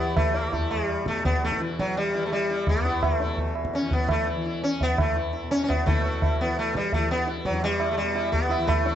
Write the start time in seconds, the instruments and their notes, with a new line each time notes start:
Already playing: tanpura E2 B2 E3, sitar B3 E4
0.17 sitar A3, tabla na, tabla ge
0.34 sitar E4, tabla te
0.48 tanpura E2
0.53 sitar E4, tabla tin, tabla ge
0.71 sitar G3, tabla na
0.88 tabla na
1.04 tanpura B2, sitar A3, tabla ke
1.25 sitar B3, tabla tin, tabla ge
1.43 sitar A3, tabla na
1.52 tabla ke
1.59 tanpura E3, sitar E4, tabla te
1.70 tabla te
1.79 sitar F#3, tabla ke
1.89 tabla te
1.97 sitar G3, tabla tin
2.14 tanpura E3, sitar E4, tabla na
2.26 sitar A3
2.32 sitar G3, tabla na
2.50 sitar E4, tabla na
2.67 tanpura E2, sitar B3, tabla na, tabla ge
2.85 sitar E4, tabla te
3.03 sitar A3, tabla na, tabla ge
3.20 sitar E4, tabla te
3.26 tanpura B2
3.37 tabla tin, tabla ge
3.55 tabla na
3.65 tabla ke
3.73 sitar C#4, tabla te
3.81 tanpura E3
3.91 sitar B3, tabla tin, tabla ge
4.09 sitar A3, tabla na, tabla ge
4.27 sitar E4
4.35 tanpura E3
4.46 sitar E4
4.62 sitar C#4, tabla te
4.81 sitar B3, tabla tin, tabla ge
4.90 tanpura E2
4.98 sitar A3, tabla na, tabla ge
5.16 sitar E4
5.33 sitar E4
5.44 tanpura B2
5.51 sitar C#4, tabla te
5.64 sitar C#4
5.68 sitar B3, tabla tin, tabla ge
5.86 tanpura B2, sitar A3 E4, tabla na, tabla ge
6.04 sitar E4, tabla te
6.22 sitar E4, tabla tin, tabla ge
6.40 tanpura E3, sitar B3, tabla na
6.57 sitar A3, tabla na
6.75 sitar G3, tabla ke
6.93 tanpura E3, sitar A3, tabla tin, tabla ge
7.11 sitar B3, tabla na
7.27 sitar E4, tabla te
7.37 tabla te
7.45 tanpura E2, sitar F#3, tabla ke
7.54 tabla te
7.63 sitar G3, tabla tin
7.80 sitar E4, tabla na
7.91 sitar A3
7.97 sitar G3, tabla na
8.02 tanpura B2
8.14 sitar E4, tabla na
8.32 sitar B3, tabla tin, tabla ge
8.49 sitar E4, tabla na
8.58 tanpura E3
8.67 sitar A3, tabla na, tabla ge
8.85 sitar E4, tabla te